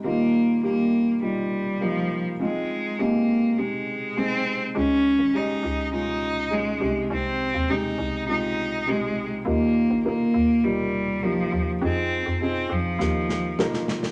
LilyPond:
<<
  \new Staff \with { instrumentName = "Felt piano" } { \time 4/4 \key ees \mixolydian \tempo 4 = 102 <g bes ees' f'>4 <g bes ees' g'>4 <g bes ees' f'>4 <g bes ees' f'>4 | <aes c' ees' f'>4 <aes c' ees' g'>4 <aes c' ees' g'>4 <aes c' ees' aes'>4 | <aes des' ees' aes'>4 <aes des' ees' g'>4 <aes des' ees' f'>4 <aes des' ees' aes'>8 <aes c' ees' g'>8~ | <aes c' ees' g'>4 <aes c' ees' g'>4 <aes c' ees' f'>4 <aes c' ees' g'>4 |
<bes ees' f' g'>4 <bes ees' f' bes'>4 <bes ees' f' g'>4 <bes ees' f' g'>4 | <c' ees' f' aes'>4 <c' ees' f' aes'>4 <bes ees' f' g'>4 <bes ees' f' bes'>4 | }
  \new Staff \with { instrumentName = "Felt piano" } { \clef bass \time 4/4 \key ees \mixolydian ees4. r2 r8 | r1 | des4. r2 c8~ | c4 r2. |
ees4. r2 r8 | r2 ees4. r8 | }
  \new Staff \with { instrumentName = "Cello" } { \time 4/4 \key ees \mixolydian bes4 bes4 g4 f8. r16 | aes4 bes4 aes4 c'8. r16 | des'4 ees'4 ees'4 aes8. r16 | c'4 ees'4 ees'4 aes8. r16 |
bes4 bes4 g4 f8. r16 | c'4 c'8 f2 r8 | }
  \new Staff \with { instrumentName = "FM bass" } { \clef bass \time 4/4 \key ees \mixolydian r1 | r1 | des,8. aes,,8. des,2 c,8 | c,8. ees,8. c,2~ c,8 |
ees,8. bes,,8. ees,2 ees,8 | f,8. f,8. f,8 ees,4 r4 | }
  \new DrumStaff \with { instrumentName = "Drums" } \drummode { \time 4/4 r4 r4 r4 r4 | r4 r4 r4 r4 | r4 r4 r4 r4 | r4 r4 r4 r4 |
r4 r4 r4 r4 | r4 r4 sn8 sn8 sn16 sn16 sn16 sn16 | }
>>